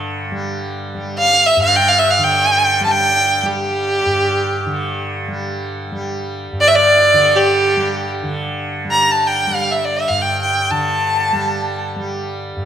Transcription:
0.00 1.56 G2 medium
0.00 2.18 D3 medium
0.00 0.32 G3 medium
0.32 0.94 G3 medium
0.94 2.81 G3 medium
1.18 1.48 F5 medium
1.46 1.62 E5 medium
1.57 4.05 G2 medium
1.63 1.78 F5 medium
1.76 1.90 G5 medium
1.88 2.00 F5 medium
1.98 2.12 E5 medium
2.10 2.25 F5 medium
2.19 4.66 D3 medium
2.24 2.84 G5 medium
2.81 3.43 G3 medium
2.85 2.93 A5 medium
2.92 3.48 G5 medium
3.43 5.28 G3 medium
3.43 5.02 G4 medium
4.06 6.52 G2 medium
4.66 7.13 D3 medium
5.28 5.92 G3 medium
5.92 7.76 G3 medium
6.52 10.09 G2 medium
6.61 6.69 D5 loud
6.68 6.77 E5 medium
6.76 7.38 D5 loud
7.14 8.23 D3 medium
7.37 8.10 G4 medium
7.76 8.85 G3 medium
8.23 10.71 D3 medium
8.85 9.47 G3 medium
8.91 9.13 A#5 medium
9.12 9.29 A5 medium
9.27 9.57 G5 medium
9.47 11.32 G3 medium
9.55 9.73 F5 medium
9.71 9.86 E5 medium
9.85 9.98 D5 medium
9.96 10.10 E5 medium
10.08 12.56 G2 medium
10.08 10.23 F5 medium
10.22 10.41 G5 medium
10.43 10.72 G5 medium
10.71 12.65 D3 medium
10.71 11.85 A5 medium
11.33 11.96 G3 medium
11.96 12.65 G3 medium
12.57 12.65 G2 medium

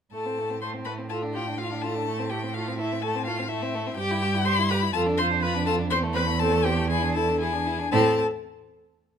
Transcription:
0.13 3.94 A2 soft
0.13 0.27 A3 soft
0.13 0.59 A4 soft
0.13 0.58 A5 medium
0.26 0.40 C4 soft
0.39 0.51 A3 soft
0.50 0.61 C4 soft
0.62 0.75 A3 soft
0.62 0.70 C5 soft
0.62 0.70 C6 medium
0.74 0.88 C4 soft
0.85 1.00 A3 soft
0.85 0.93 B4 medium
0.85 0.93 B5 medium
0.98 1.10 C4 soft
1.09 1.24 F4 soft
1.09 1.33 A4 soft
1.09 1.17 A5 medium
1.23 1.37 D4 soft
1.34 1.49 F4 soft
1.34 1.42 G4 medium
1.34 1.60 G5 medium
1.47 1.59 D4 soft
1.58 1.66 F4 soft
1.58 1.73 F4 soft
1.58 1.83 F5 medium
1.72 1.85 D4 soft
1.82 1.97 F4 soft
1.82 2.30 A4 medium
1.82 2.31 A5 medium
1.95 2.07 D4 soft
2.07 2.21 A3 soft
2.19 2.33 C4 soft
2.29 2.45 A3 soft
2.29 2.38 G4 medium
2.29 2.56 G5 medium
2.43 2.55 C4 soft
2.54 2.69 A3 soft
2.54 2.78 F4 medium
2.54 2.77 F5 medium
2.68 2.81 C4 soft
2.78 2.94 A3 soft
2.78 3.02 E4 medium
2.78 3.03 E5 medium
2.92 3.03 C4 soft
3.02 3.17 A3 medium
3.02 3.11 A4 medium
3.02 3.25 A5 medium
3.16 3.29 C4 soft
3.26 3.41 A3 medium
3.26 3.50 F4 medium
3.26 3.50 F5 medium
3.39 3.50 C4 soft
3.48 3.64 A3 medium
3.48 3.97 E4 medium
3.48 3.96 E5 medium
3.62 3.76 C4 medium
3.75 3.88 A3 medium
3.87 3.98 C4 medium
3.96 4.92 G2 medium
3.96 4.45 G4 medium
3.96 4.13 G4 medium
3.96 4.46 G5 medium
4.11 4.24 E4 medium
4.23 4.37 G4 medium
4.35 4.47 E4 medium
4.45 4.60 G4 medium
4.45 4.54 C5 medium
4.45 4.70 C6 loud
4.59 4.72 E4 medium
4.69 4.84 G4 medium
4.69 4.78 B4 medium
4.69 4.92 B5 medium
4.83 4.94 E4 medium
4.93 5.92 F2 medium
4.93 5.08 F4 medium
4.93 5.20 A4 medium
4.93 5.01 A5 loud
5.06 5.21 D4 medium
5.17 5.32 F4 medium
5.17 5.44 C5 medium
5.17 5.25 C6 loud
5.31 5.42 D4 medium
5.42 5.56 F4 medium
5.42 5.66 B4 medium
5.42 5.66 B5 medium
5.55 5.69 D4 medium
5.66 5.80 F4 medium
5.66 5.75 A4 medium
5.66 5.74 A5 loud
5.79 5.91 D4 medium
5.90 7.72 E2 medium
5.90 6.05 C4 medium
5.90 5.99 C5 medium
5.90 5.98 C6 loud
6.03 6.16 A3 medium
6.14 6.28 C4 medium
6.14 6.23 B4 medium
6.14 6.41 B5 medium
6.27 6.39 A3 medium
6.39 6.54 C4 medium
6.39 6.66 A4 medium
6.39 6.66 A5 medium
6.53 6.65 A3 medium
6.64 6.79 C4 medium
6.64 6.89 G4 medium
6.64 6.89 G5 medium
6.77 6.90 A3 medium
6.89 7.04 E4 medium
6.89 7.17 G#4 medium
6.89 7.14 G#5 medium
7.03 7.17 D4 medium
7.14 7.30 E4 medium
7.14 7.43 A4 medium
7.14 7.40 A5 medium
7.29 7.40 D4 medium
7.40 7.55 E4 medium
7.40 7.92 G#4 medium
7.40 7.91 G#5 medium
7.53 7.67 D4 soft
7.66 7.80 E4 medium
7.79 7.91 D4 soft
7.91 8.21 A2 medium
7.91 8.20 C4 medium
7.91 8.21 A4 medium
7.91 8.20 A5 medium

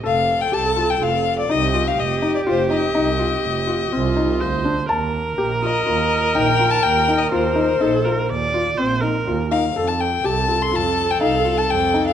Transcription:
0.04 0.41 F1 medium
0.04 0.29 A4 medium
0.04 1.51 A4 medium
0.04 0.43 F5 medium
0.41 0.55 G5 medium
0.52 0.89 C2 medium
0.52 0.65 G4 medium
0.52 0.91 A5 medium
0.77 0.89 F4 medium
0.90 1.04 G5 medium
1.01 1.38 F1 medium
1.01 1.26 F4 medium
1.01 1.39 F5 medium
1.39 1.52 D5 medium
1.49 1.87 C2 loud
1.49 1.62 D#4 medium
1.49 3.94 G4 medium
1.49 1.89 D#5 medium
1.74 1.99 F4 medium
1.88 2.01 F5 medium
1.99 2.35 F1 medium
1.99 2.35 D#5 medium
2.22 2.35 D#4 medium
2.35 2.41 D5 medium
2.47 2.84 F1 medium
2.47 2.59 F4 medium
2.47 2.70 C5 medium
2.70 2.83 D#4 medium
2.70 4.62 D#5 medium
2.95 3.32 C2 medium
2.95 3.08 D#4 medium
3.19 3.44 F4 medium
3.44 3.81 F1 medium
3.67 3.80 F4 medium
3.92 4.29 C2 loud
3.92 4.05 C4 medium
3.92 4.42 F4 medium
4.16 4.29 D#4 medium
4.40 4.78 D2 medium
4.40 4.53 F4 medium
4.40 4.89 C5 medium
4.65 4.78 D4 medium
4.89 5.26 D#2 medium
4.89 7.83 A#4 loud
4.89 5.14 A5 medium
5.38 5.75 A#1 medium
5.38 5.51 G4 medium
5.62 5.75 F4 medium
5.62 6.36 D#5 medium
5.86 6.23 D#2 medium
5.86 6.11 F4 medium
6.35 6.72 A#1 loud
6.35 6.48 D#4 medium
6.35 6.72 G5 medium
6.59 6.84 F4 medium
6.70 6.84 A5 loud
6.82 7.21 D#2 medium
6.82 7.20 G5 medium
7.08 7.21 D#4 medium
7.18 7.31 D#5 medium
7.31 7.69 D#2 medium
7.31 7.45 F4 medium
7.31 8.25 C5 medium
7.56 7.68 D#4 medium
7.80 8.18 A#1 medium
7.80 7.93 D#4 medium
7.80 8.07 A4 medium
8.05 8.30 F4 medium
8.05 8.31 A#4 medium
8.29 8.67 D#2 medium
8.29 8.79 D5 loud
8.54 8.67 F4 medium
8.78 9.15 A#1 loud
8.78 8.91 C4 medium
8.78 9.03 C5 medium
9.02 9.15 D#4 medium
9.02 9.51 A#4 medium
9.27 9.64 D#2 medium
9.27 9.40 F4 medium
9.51 9.64 D#4 medium
9.51 9.89 F5 medium
9.74 10.12 F2 medium
9.74 12.13 A4 medium
9.74 10.01 A4 medium
9.87 10.02 A5 medium
10.00 10.27 G5 medium
10.24 10.61 C2 medium
10.24 10.37 G4 medium
10.24 10.64 A5 medium
10.49 10.61 F4 medium
10.62 10.76 C6 medium
10.72 11.10 F2 medium
10.72 10.97 F4 medium
10.72 11.12 A5 medium
11.11 11.21 G5 medium
11.21 11.59 C2 medium
11.21 11.33 D#4 medium
11.21 11.59 F5 medium
11.45 11.70 F4 medium
11.58 11.72 A5 medium
11.70 12.07 F2 medium
11.70 12.06 G5 medium
11.94 12.07 D#4 medium
12.07 12.13 F5 medium

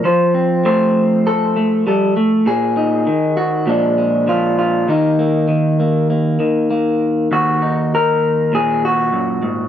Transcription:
0.04 2.42 F3 medium
0.04 0.65 C5 medium
0.34 1.26 C4 soft
0.65 1.55 A3 medium
0.65 1.87 C5 medium
1.27 1.86 A4 medium
1.56 1.86 A3 medium
1.87 2.16 G3 soft
1.87 2.47 A4 medium
2.17 2.47 A3 medium
2.46 3.07 A#2 medium
2.46 3.37 G#4 medium
2.77 3.64 D#4 soft
3.07 3.67 D#3 medium
3.37 3.67 F#4 medium
3.67 4.88 A#2 medium
3.67 4.26 F3 soft
3.67 3.97 G#3 soft
3.67 4.88 D4 medium
3.98 4.88 G#3 soft
4.27 4.84 F3 soft
4.27 4.57 F4 medium
4.59 4.88 F4 medium
4.88 7.30 D#2 medium
4.88 5.47 D#3 soft
4.88 5.18 A#3 soft
4.88 7.32 D#4 medium
5.19 5.79 A#3 soft
5.48 6.39 D#3 medium
5.80 6.09 A#3 soft
6.10 6.69 A#3 soft
6.40 9.68 D#3 soft
6.71 7.28 A#3 soft
7.32 9.12 D#2 medium
7.32 7.93 F#4 medium
7.62 9.68 D#4 soft
7.95 8.54 A#4 medium
8.53 9.68 A#2 medium
8.53 8.84 G#4 loud
8.85 9.68 F#4 medium
9.13 9.42 F#2 medium
9.43 9.68 G#2 medium

